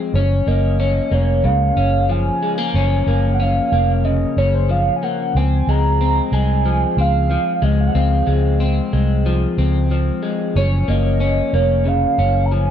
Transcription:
Already playing: clean electric guitar F3 G#3 C4 G#4
0.14 fingered electric bass F#1, clean electric guitar C#4, soft synth lead C#5
0.46 fingered electric bass F#1, clean electric guitar A#3, soft synth lead D#5
0.80 clean electric guitar C#4
1.11 fingered electric bass F1, clean electric guitar A#3, soft synth lead C#5
1.44 fingered electric bass C#2, clean electric guitar C#3, soft synth lead F5
1.76 fingered electric bass F#1, clean electric guitar C#4
2.09 clean electric guitar F3, soft synth lead G#5
2.42 clean electric guitar G#3
2.58 clean electric guitar A#3
2.74 fingered electric bass F#1, clean electric guitar C#4, soft synth lead G#5
3.06 fingered electric bass F#1, clean electric guitar A#3
3.34 soft synth lead F#5
3.40 clean electric guitar C#4, soft synth lead F5
3.72 fingered electric bass F1, clean electric guitar A#3
4.05 clean electric guitar C#3, soft synth lead D#5
4.37 fingered electric bass F#1, clean electric guitar C#4, soft synth lead C#5
4.54 soft synth lead C5
4.69 clean electric guitar F3, soft synth lead F5
4.96 soft synth lead G#5
5.03 clean electric guitar A#3, soft synth lead F#5
5.35 fingered electric bass C#2, clean electric guitar C4, soft synth lead G#5
5.67 fingered electric bass C#2, clean electric guitar G#3, soft synth lead A#5
6.01 clean electric guitar C4
6.32 fingered electric bass C2, clean electric guitar G#3, soft synth lead G#5
6.65 clean electric guitar F3
6.97 fingered electric bass C#2, clean electric guitar C4, soft synth lead F5
7.31 clean electric guitar F3
7.62 fingered electric bass C#2, clean electric guitar G#3, soft synth lead D#5
7.81 soft synth lead F5
7.87 soft synth lead F#5
7.93 fingered electric bass C#2, clean electric guitar C4, soft synth lead F5
8.27 fingered electric bass C#2, clean electric guitar G#3
8.60 clean electric guitar C4
8.93 fingered electric bass C2, clean electric guitar G#3
9.26 clean electric guitar F3
9.58 fingered electric bass C#2, clean electric guitar C4
9.91 clean electric guitar F3
10.23 clean electric guitar G#3
10.56 fingered electric bass F#1, clean electric guitar C#4, soft synth lead C#5
10.88 fingered electric bass F#1, clean electric guitar A#3, soft synth lead D#5
11.20 clean electric guitar C#4
11.53 fingered electric bass F1, clean electric guitar A#3, soft synth lead C#5
11.85 clean electric guitar C#3, soft synth lead F5
12.18 fingered electric bass F#1, clean electric guitar C#4
12.45 soft synth lead A#5
12.52 clean electric guitar F3, soft synth lead G#5

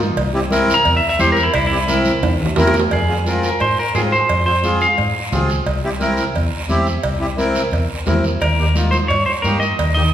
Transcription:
0.00 short guiro
0.17 fingered electric bass C2, cowbell, long guiro
0.33 accordion C4 E4 G4
0.51 accordion C4 E4 A#4, high conga, short guiro
0.70 short guiro
0.74 clean electric guitar A#5
0.85 fingered electric bass E2, cowbell, long guiro
0.97 clean electric guitar E5
1.09 clean electric guitar E5
1.19 fingered electric bass E2, accordion C4 E4 G4, clean electric guitar C5, high conga, short guiro
1.32 clean electric guitar A#4
1.37 short guiro
1.43 clean electric guitar E4
1.54 fingered electric bass C2, clean electric guitar E4, cowbell, long guiro
1.67 accordion C4, clean electric guitar E4
1.71 accordion E4 G4
1.88 accordion C4 E4 A#4, high conga, short guiro
2.05 high conga, short guiro
2.23 fingered electric bass E2, cowbell, high timbale, long guiro
2.40 low conga
2.46 low timbale
2.56 fingered electric bass E2, accordion C4 E4 A#4, low timbale, short guiro
2.67 low timbale
2.74 low conga, short guiro
2.79 low timbale
2.91 fingered electric bass F2, clean electric guitar G#4, cowbell, long guiro
3.08 accordion C4 F4 G#4
3.26 accordion C4 F4 A#4, high conga, short guiro
3.43 clean electric guitar A#4, high conga, short guiro
3.60 fingered electric bass G#2, clean electric guitar C5, cowbell, long guiro
3.79 clean electric guitar A#4
3.95 fingered electric bass G#2, accordion C4 F4 G#4, clean electric guitar G#4, high conga, low timbale, short guiro
4.12 clean electric guitar C5, short guiro
4.29 fingered electric bass F2, cowbell, long guiro
4.46 accordion C4 F4 G#4, clean electric guitar C5
4.63 accordion C4 F4 G#4, high conga, short guiro
4.81 clean electric guitar F5, high conga, short guiro
4.98 fingered electric bass G#2, cowbell, long guiro
5.32 fingered electric bass C#2, accordion C4 F4 G#4, high conga, low conga, low timbale, short guiro
5.50 short guiro
5.66 fingered electric bass C2, cowbell, long guiro
5.84 accordion C4 E4 G4
5.99 accordion C4 E4 A#4, high conga, short guiro
6.17 short guiro
6.35 fingered electric bass E2, cowbell, long guiro
6.69 fingered electric bass E2, accordion C4 E4 G4, high conga, short guiro
6.87 short guiro
7.03 fingered electric bass C2, cowbell, long guiro
7.20 accordion C4 E4 G4
7.37 accordion C4 E4 A#4, high conga, short guiro
7.55 short guiro
7.71 fingered electric bass E2, cowbell, long guiro
8.06 fingered electric bass E2, accordion C4 E4 A#4, high conga, low conga, low timbale, short guiro
8.24 short guiro
8.41 fingered electric bass D#2, clean electric guitar A#4, cowbell, long guiro
8.59 accordion A#3 D#4 G4
8.75 accordion A#3 D#4 F4, high conga, short guiro
8.91 clean electric guitar C5, high conga, short guiro
9.08 fingered electric bass G2, clean electric guitar C#5, cowbell, long guiro
9.26 clean electric guitar C5
9.42 fingered electric bass G2, accordion A#3 D#4 G4, clean electric guitar A#4, high conga, short guiro
9.60 clean electric guitar D#5, short guiro
9.79 fingered electric bass D#2, cowbell, long guiro
9.95 accordion A#3 D#4 G4, clean electric guitar D#5, low conga

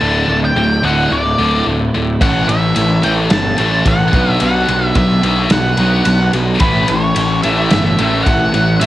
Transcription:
Already playing: lead electric guitar A5
0.00 picked electric bass D1, clean electric guitar D2 A2 D3 A3 E4
0.28 picked electric bass D1, distorted electric guitar D2, clean electric guitar A2 D3 A3 E4
0.41 clean electric guitar D3 A3 E4, lead electric guitar G5
0.55 picked electric bass D1, clean electric guitar D2 A2 D3 A3 E4
0.82 picked electric bass D1, distorted electric guitar D2, clean electric guitar A2 D3 A3 E4, lead electric guitar F#5
0.96 clean electric guitar D3 A3 E4
1.11 picked electric bass D1, distorted electric guitar D2 A2, lead electric guitar D5
1.24 clean electric guitar D3 A3 E4
1.38 picked electric bass D1, distorted electric guitar D2, clean electric guitar A2 D3 A3 E4
1.52 clean electric guitar D3 A3 E4
1.66 picked electric bass D1, clean electric guitar D2 A2 D3 A3 E4
1.80 clean electric guitar D3 A3 E4
1.93 picked electric bass D1, distorted electric guitar D2, clean electric guitar A2 D3 A3 E4
2.21 picked electric bass A1, clean electric guitar A2 E3 A3 C#4 E4 A4, lead electric guitar F#5, kick, ride
2.48 picked electric bass A1, distorted electric guitar A2 E3, clean electric guitar A3 C#4 E4 A4, lead electric guitar E5, ride
2.63 clean electric guitar A3 C#4 E4 A4
2.76 picked electric bass A1, clean electric guitar A2 E3 A3 C#4 E4 A4, ride
3.03 picked electric bass A1, distorted electric guitar A2 E3, clean electric guitar A3 C#4 E4 A4, lead electric guitar G5, ride
3.17 clean electric guitar A3 C#4 E4 A4
3.30 picked electric bass G1, distorted electric guitar A2 E3, lead electric guitar A5, snare, ride
3.45 clean electric guitar A3 C#4 E4 A4
3.58 picked electric bass A1, distorted electric guitar A2 E3, clean electric guitar A3 C#4 E4 A4, ride
3.71 clean electric guitar A3 C#4 E4 A4
3.85 picked electric bass A1, clean electric guitar A2 E3 A3 C#4 E4 A4, lead electric guitar F#5, kick, ride
3.99 clean electric guitar A3 C#4 E4 A4
4.13 picked electric bass B1, clean electric guitar B2 F#3 B3 D4 F#4 B4, kick, ride
4.40 picked electric bass B1, clean electric guitar B2 F#3 B3 D4 F#4 B4, lead electric guitar F#5, ride
4.68 picked electric bass B1, distorted electric guitar B2 F#3, clean electric guitar B3 D4 F#4 B4, ride
4.81 clean electric guitar B3 D4 F#4 B4
4.95 picked electric bass B1, clean electric guitar B2 F#3 B3 D4 F#4 B4, lead electric guitar E5, kick, ride
5.23 picked electric bass B1, distorted electric guitar B2 F#3, clean electric guitar B3 D4 F#4 B4, ride
5.37 clean electric guitar B3 D4 F#4 B4
5.50 picked electric bass B1, distorted electric guitar B2 F#3, lead electric guitar F#5, snare, ride
5.64 clean electric guitar B3 D4 F#4 B4
5.77 picked electric bass B1, distorted electric guitar B2 F#3, clean electric guitar B3 D4 F#4 B4, ride
5.92 clean electric guitar B3 D4 F#4 B4
6.05 picked electric bass B1, clean electric guitar B2 F#3 B3 D4 F#4 B4, ride
6.20 clean electric guitar B3 D4 F#4 B4
6.33 picked electric bass B1, distorted electric guitar B2 F#3, clean electric guitar B3 D4 F#4 B4, ride
6.60 picked electric bass A1, clean electric guitar A2 E3 A3 C#4 E4 A4, lead electric guitar B4, kick, ride
6.88 picked electric bass A1, distorted electric guitar A2 E3, clean electric guitar A3 C#4 E4 A4, lead electric guitar C#5, ride
7.02 clean electric guitar A3 C#4 E4 A4
7.16 picked electric bass A1, clean electric guitar A2 E3 A3 C#4 E4 A4, ride
7.42 picked electric bass A1, distorted electric guitar A2 E3, clean electric guitar A3 C#4 E4 A4, lead electric guitar E5, ride
7.57 clean electric guitar A3 C#4 E4 A4
7.71 picked electric bass G1, distorted electric guitar A2 E3, snare, ride
7.84 clean electric guitar A3 C#4 E4 A4
7.98 picked electric bass A1, distorted electric guitar A2 E3, clean electric guitar A3 C#4 E4 A4, ride
8.12 clean electric guitar A3 C#4 E4 A4
8.23 picked electric bass A1, clean electric guitar A2 E3 A3 C#4 E4, lead electric guitar F#5, kick, ride
8.28 clean electric guitar A4
8.40 clean electric guitar A3 C#4 E4 A4
8.54 picked electric bass A1, distorted electric guitar A2 E3, clean electric guitar A3 C#4 E4 A4, ride
8.80 picked electric bass A1, clean electric guitar A2 E3 A3, lead electric guitar E5, ride

